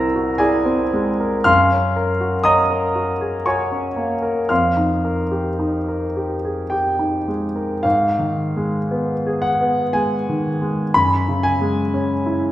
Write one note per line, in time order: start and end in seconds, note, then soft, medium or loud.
0.00 1.43 C2 soft
0.00 0.65 C4 soft
0.00 0.40 E4 soft
0.00 1.20 A#4 soft
0.00 0.36 A#5 medium
0.00 1.45 C6 medium
0.00 0.36 E6 medium
0.00 1.49 F#6 medium
0.00 0.39 A#6 medium
0.00 1.50 C7 medium
0.15 0.41 F#4 soft
0.38 0.82 E4 soft
0.38 1.43 G#4 medium
0.38 1.42 D5 soft
0.38 1.46 G#5 medium
0.65 1.09 C4 soft
0.93 1.37 G#3 soft
1.20 1.47 A#4 soft
1.44 4.45 F#2 soft
1.44 2.40 F5 medium
1.44 2.40 C6 medium
1.44 2.43 F6 medium
1.72 2.10 C#4 soft
1.96 2.35 A#4 soft
2.21 2.60 F#4 soft
2.44 2.85 C#4 soft
2.44 3.42 D#5 medium
2.44 3.42 A#5 medium
2.44 3.45 D#6 medium
2.70 3.11 A#4 soft
2.95 3.36 F#4 soft
3.21 3.46 G#4 soft
3.46 3.87 F#4 soft
3.46 4.46 C#5 soft
3.46 4.47 G#5 soft
3.46 4.50 C#6 medium
3.72 4.13 C#4 soft
3.96 4.39 A#3 soft
4.22 4.50 A#4 soft
4.49 7.81 F2 soft
4.49 7.25 F5 soft
4.49 7.25 C6 soft
4.49 7.29 F6 medium
4.77 5.21 D#4 soft
5.05 5.50 A#4 soft
5.31 5.77 G4 soft
5.59 6.05 D#4 soft
5.88 6.34 A#4 soft
6.17 6.62 G4 soft
6.45 6.73 G#4 soft
6.70 7.17 G4 soft
6.70 7.83 G5 medium
6.99 7.45 D#4 soft
7.28 7.73 G#3 soft
7.56 7.84 A#4 soft
7.83 10.91 G#2 soft
7.83 9.43 F5 medium
8.19 8.77 D#3 soft
8.57 9.13 G#3 soft
8.91 9.47 B3 soft
9.27 9.81 G#4 soft
9.42 9.94 F#5 medium
9.61 10.15 B3 soft
9.93 10.49 G#3 soft
9.93 10.94 G#5 medium
10.29 10.82 D#3 soft
10.62 10.95 G#3 soft
10.94 12.52 F#2 soft
10.94 11.44 B5 medium
11.28 11.81 C#3 soft
11.43 12.52 G#5 medium
11.61 12.13 G#3 soft
11.94 12.46 C#4 soft
12.26 12.52 E4 soft